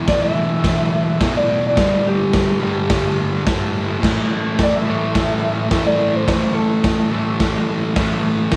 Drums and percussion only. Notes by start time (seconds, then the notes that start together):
0.07 kick, snare, open hi-hat
0.64 kick, snare, open hi-hat
1.20 kick, snare, open hi-hat
1.77 kick, snare, open hi-hat
2.33 kick, snare, open hi-hat
2.89 kick, snare, open hi-hat
3.46 kick, snare, open hi-hat
4.03 kick, snare, crash
4.58 kick, snare, open hi-hat
5.15 kick, snare, open hi-hat
5.71 kick, snare, open hi-hat
6.28 kick, snare, open hi-hat
6.84 kick, snare, open hi-hat
7.40 kick, snare, open hi-hat
7.96 kick, snare, open hi-hat
8.51 kick, snare, open hi-hat